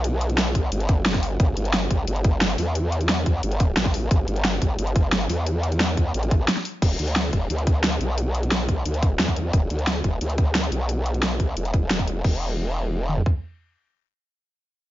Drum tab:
CC |----------------|----------------|----------------|----------------|
HH |x-xxx-x-xxx-xxo-|x-xxx-x-xxx-xxo-|x-xxx-x-xxx-xxo-|x-xxx-x-xxx-xxo-|
SD |----o-------oo--|----o-------o---|----o-------oo--|----o-------o---|
T2 |----------------|----------------|----------------|----------------|
FT |----------------|----------------|----------------|----------------|
BD |------o---o--o--|o-----o---o-----|------o---o--o--|o-----o---o-----|

CC |----------------|x---------------|----------------|----------------|
HH |x-xxx-x-xxx-xxo-|x-xxx-x-xxx-xxx-|x-xxx-x-xxx-xxx-|x-xxx-x-xxx-xxx-|
SD |----o-------oo--|----o-------o---|----o-------o---|----o-------o---|
T2 |----------------|----------------|----------------|----------------|
FT |----------------|----------------|----------------|----------------|
BD |------o---o-----|o-----o---o-----|------o---o--o--|o-----o---o-----|

CC |----------------|x---------------|----------------|
HH |x-xxx-x-xxx-xxx-|----------------|----------------|
SD |----o-------o---|----------------|----------------|
T2 |----------------|----------o-----|----------------|
FT |----------------|-----------o----|----------------|
BD |------o---o--o--|o-----------o---|----------------|